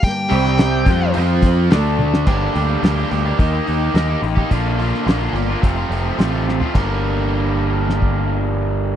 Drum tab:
CC |----------------|x---------------|----------------|x---------------|
HH |o-o-o-o-o-o-o---|--o-o-o-o-o-o-o-|o-o-o-o-o-o-o---|----------------|
SD |---oo-------o--o|----o-------o---|---oo-------o-o-|--------o-------|
T1 |--------------o-|----------------|----------------|----------------|
FT |----------------|----------------|---------------o|----------------|
BD |o-----o---o-----|o-------o------o|o-------o-------|o--------o------|